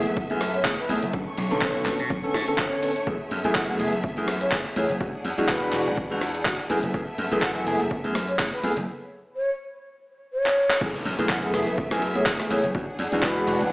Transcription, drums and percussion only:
0.06 closed hi-hat
0.17 kick
0.30 closed hi-hat
0.41 cross-stick, open hi-hat
0.54 closed hi-hat
0.65 kick, clap
0.78 closed hi-hat
0.89 open hi-hat
1.03 closed hi-hat
1.13 kick
1.38 open hi-hat
1.51 closed hi-hat
1.62 kick, clap
1.75 closed hi-hat
1.86 kick, clap, open hi-hat
1.99 closed hi-hat
2.10 kick
2.24 closed hi-hat
2.34 cross-stick, open hi-hat
2.48 closed hi-hat
2.58 kick, clap
2.72 closed hi-hat
2.83 open hi-hat
2.96 closed hi-hat
3.07 kick
3.31 open hi-hat
3.44 closed hi-hat
3.55 kick, clap
3.79 open hi-hat
3.93 closed hi-hat
4.04 kick
4.17 closed hi-hat
4.28 cross-stick, open hi-hat
4.41 closed hi-hat
4.52 kick, clap
4.65 closed hi-hat
4.76 open hi-hat
4.90 closed hi-hat
5.01 kick
5.25 open hi-hat
5.38 closed hi-hat
5.49 kick, clap
5.62 closed hi-hat
5.73 clap, open hi-hat
5.86 closed hi-hat
5.97 kick
6.10 closed hi-hat
6.21 cross-stick, open hi-hat
6.35 closed hi-hat
6.45 kick, clap
6.59 closed hi-hat
6.70 open hi-hat
6.83 closed hi-hat
6.94 kick
7.18 open hi-hat
7.32 closed hi-hat
7.42 kick, clap
7.67 open hi-hat
7.80 closed hi-hat
7.91 kick
8.04 closed hi-hat
8.15 cross-stick, open hi-hat
8.29 closed hi-hat
8.39 kick, clap
8.53 closed hi-hat
8.63 open hi-hat
8.77 closed hi-hat
10.46 clap
10.70 clap
10.81 kick, crash
11.05 open hi-hat
11.19 closed hi-hat
11.29 kick, clap
11.54 cross-stick, open hi-hat
11.67 closed hi-hat
11.78 kick
11.91 cross-stick, closed hi-hat
12.02 open hi-hat
12.15 closed hi-hat
12.26 kick, clap
12.40 cross-stick, closed hi-hat
12.51 open hi-hat
12.64 closed hi-hat
12.75 kick
12.99 open hi-hat
13.12 closed hi-hat
13.23 kick, clap
13.47 open hi-hat
13.61 closed hi-hat

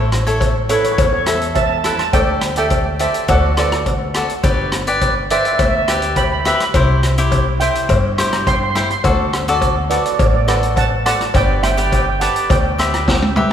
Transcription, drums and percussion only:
0.12 cross-stick, closed hi-hat
0.27 closed hi-hat
0.40 kick, closed hi-hat, cowbell
0.69 closed hi-hat
0.84 closed hi-hat
0.98 kick, closed hi-hat, cowbell
1.26 cross-stick, closed hi-hat
1.41 closed hi-hat
1.55 kick, closed hi-hat, cowbell
1.84 cross-stick, closed hi-hat
1.99 cross-stick, closed hi-hat
2.13 kick, closed hi-hat, cowbell
2.41 cross-stick, closed hi-hat
2.56 closed hi-hat
2.70 kick, closed hi-hat, cowbell
2.99 closed hi-hat
3.14 closed hi-hat
3.28 kick, closed hi-hat, cowbell
3.57 cross-stick, closed hi-hat
3.72 cross-stick, closed hi-hat
3.86 kick, closed hi-hat, cowbell
4.14 cross-stick, closed hi-hat
4.29 closed hi-hat
4.44 kick, closed hi-hat, cowbell
4.72 cross-stick, closed hi-hat
4.87 closed hi-hat
5.01 kick, closed hi-hat, cowbell
5.30 closed hi-hat
5.45 closed hi-hat
5.59 kick, closed hi-hat, cowbell
5.88 cross-stick, closed hi-hat
6.02 closed hi-hat
6.16 kick, closed hi-hat, cowbell
6.45 cross-stick, closed hi-hat
6.60 cross-stick, closed hi-hat
6.74 kick, closed hi-hat, cowbell
7.03 cross-stick, closed hi-hat
7.18 closed hi-hat
7.32 kick, closed hi-hat, cowbell
7.60 closed hi-hat
7.75 closed hi-hat
7.89 kick, closed hi-hat, cowbell
8.18 cross-stick, closed hi-hat
8.33 cross-stick, closed hi-hat
8.47 kick, closed hi-hat, cowbell
8.75 cross-stick, closed hi-hat
8.90 closed hi-hat
9.04 kick, closed hi-hat, cowbell
9.33 cross-stick, closed hi-hat
9.48 closed hi-hat
9.61 kick, closed hi-hat, cowbell
9.90 closed hi-hat
10.06 closed hi-hat
10.19 kick, closed hi-hat, cowbell
10.48 cross-stick, closed hi-hat
10.63 closed hi-hat
10.76 kick, closed hi-hat, cowbell
11.06 cross-stick, closed hi-hat
11.21 cross-stick, closed hi-hat
11.34 kick, closed hi-hat, cowbell
11.63 cross-stick, closed hi-hat
11.78 closed hi-hat
11.92 kick, closed hi-hat, cowbell
12.21 closed hi-hat
12.36 closed hi-hat
12.50 kick, closed hi-hat, cowbell
12.79 cross-stick, closed hi-hat
12.94 cross-stick, closed hi-hat
13.08 kick, snare, cowbell
13.22 high tom
13.36 mid tom

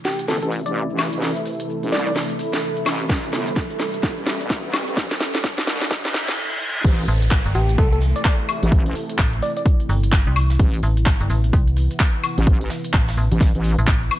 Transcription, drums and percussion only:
0.05 snare, open hi-hat, shaker
0.19 closed hi-hat, shaker
0.28 snare, shaker
0.43 closed hi-hat, shaker
0.52 open hi-hat, shaker
0.66 closed hi-hat, shaker
0.76 shaker
0.90 shaker
0.99 snare, open hi-hat, high woodblock, shaker
1.13 closed hi-hat, shaker
1.22 snare, shaker
1.36 closed hi-hat, shaker
1.46 open hi-hat, shaker
1.60 closed hi-hat, shaker
1.69 shaker
1.83 open hi-hat, shaker
1.93 snare, open hi-hat, shaker
2.07 closed hi-hat, shaker
2.16 snare, shaker
2.30 closed hi-hat, shaker
2.39 open hi-hat, shaker
2.53 snare, closed hi-hat, shaker
2.63 shaker
2.77 closed hi-hat, shaker
2.86 snare, open hi-hat, high woodblock, shaker
3.00 closed hi-hat, shaker
3.09 kick, snare, shaker
3.24 closed hi-hat, shaker
3.33 snare, open hi-hat, shaker
3.47 closed hi-hat, shaker
3.56 kick, snare, shaker
3.70 closed hi-hat, shaker
3.80 snare, open hi-hat, shaker
3.94 closed hi-hat, shaker
4.03 kick, snare, shaker
4.17 closed hi-hat, shaker
4.27 snare, open hi-hat, shaker
4.41 closed hi-hat, shaker
4.50 kick, snare, shaker
4.65 shaker
4.74 snare, open hi-hat, high woodblock, shaker
4.88 closed hi-hat, shaker
4.97 kick, snare, shaker
5.11 snare, closed hi-hat, shaker
5.21 snare, open hi-hat, shaker
5.35 snare, closed hi-hat, shaker
5.44 kick, snare, shaker
5.58 snare, open hi-hat, shaker
5.67 snare, open hi-hat, shaker
5.82 snare, closed hi-hat, shaker
5.91 kick, snare, shaker
6.05 snare, closed hi-hat, shaker
6.14 snare, open hi-hat, shaker
6.28 snare, closed hi-hat, shaker
6.84 kick, closed hi-hat, crash, shaker
6.99 closed hi-hat, shaker
7.07 closed hi-hat, open hi-hat, shaker
7.22 closed hi-hat, shaker
7.31 kick, snare, clap, closed hi-hat, shaker
7.46 closed hi-hat, shaker
7.55 closed hi-hat, open hi-hat, shaker
7.69 closed hi-hat, shaker
7.78 kick, closed hi-hat, shaker
7.92 closed hi-hat, shaker
8.01 closed hi-hat, open hi-hat, shaker
8.16 closed hi-hat, shaker
8.25 kick, snare, clap, closed hi-hat, shaker
8.40 shaker
8.49 closed hi-hat, open hi-hat, high woodblock, shaker
8.63 closed hi-hat, shaker
8.72 kick, closed hi-hat, shaker
8.86 closed hi-hat, shaker
8.95 closed hi-hat, open hi-hat, shaker
9.10 closed hi-hat, shaker
9.19 kick, snare, clap, closed hi-hat, shaker
9.33 closed hi-hat, shaker
9.42 closed hi-hat, open hi-hat, shaker
9.57 closed hi-hat, shaker
9.66 kick, closed hi-hat, shaker
9.80 closed hi-hat, shaker
9.89 closed hi-hat, open hi-hat, shaker
10.03 closed hi-hat, shaker
10.12 kick, snare, clap, closed hi-hat, shaker
10.27 shaker
10.36 closed hi-hat, open hi-hat, high woodblock, shaker
10.50 snare, closed hi-hat, shaker
10.59 kick, closed hi-hat, shaker
10.74 closed hi-hat, shaker
10.83 closed hi-hat, open hi-hat, shaker
10.97 closed hi-hat, shaker
11.06 kick, snare, clap, closed hi-hat, shaker
11.21 closed hi-hat, shaker
11.30 closed hi-hat, open hi-hat, shaker
11.44 closed hi-hat, shaker
11.53 kick, closed hi-hat, shaker
11.68 closed hi-hat, shaker
11.77 closed hi-hat, open hi-hat, shaker
11.91 closed hi-hat, shaker
12.00 kick, snare, clap, closed hi-hat, shaker
12.15 shaker
12.23 closed hi-hat, open hi-hat, high woodblock, shaker
12.38 closed hi-hat, shaker
12.46 kick, closed hi-hat, shaker
12.61 closed hi-hat, shaker
12.70 snare, closed hi-hat, open hi-hat, shaker
12.85 closed hi-hat, shaker
12.94 kick, clap, closed hi-hat, shaker
13.08 snare, closed hi-hat, shaker
13.17 open hi-hat, shaker
13.32 closed hi-hat, shaker
13.41 kick, snare, closed hi-hat, shaker
13.55 closed hi-hat, shaker
13.64 closed hi-hat, open hi-hat, shaker
13.79 closed hi-hat, shaker
13.87 kick, snare, clap, closed hi-hat, shaker
14.02 shaker
14.11 closed hi-hat, open hi-hat, high woodblock, shaker

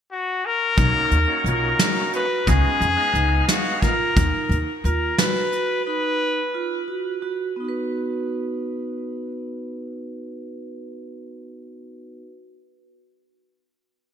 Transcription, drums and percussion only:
0.77 kick, closed hi-hat
1.11 closed hi-hat
1.46 closed hi-hat
1.79 snare, closed hi-hat
2.13 closed hi-hat
2.47 kick, closed hi-hat
2.81 closed hi-hat
3.15 closed hi-hat
3.48 snare, closed hi-hat
3.82 kick, closed hi-hat
4.16 kick, closed hi-hat
4.51 closed hi-hat
4.85 closed hi-hat
5.18 snare, closed hi-hat
5.52 closed hi-hat

